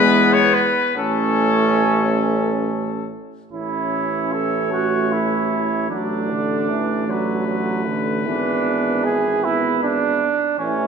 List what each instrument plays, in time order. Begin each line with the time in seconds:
Already playing: bass trombone E2, french horn G#3, trumpet B3 B4, trombone B3
0.33 trumpet C#5
0.54 trumpet B4
0.96 bass trombone A1, french horn A3, trombone C#4, trumpet C#4 A4
3.52 bass trombone A1, trombone E3, french horn C#4, trumpet E4 C#5
4.32 trumpet A4
4.72 french horn A3, trumpet F#4
5.12 trumpet E4
5.90 bass trombone A1, trombone F#3, french horn A3, trumpet D4 D5
6.30 trombone D3
6.70 trombone E3
7.08 trombone F#3, trumpet B4
7.47 trombone F#3
7.86 trombone D3
8.26 bass trombone G#1, trombone E3, french horn B3, trumpet D4
9.05 trumpet G#4
9.44 french horn B3, trumpet E4
9.83 trumpet D4
10.59 bass trombone A1, trombone E3, french horn A3, trumpet C#4 C#5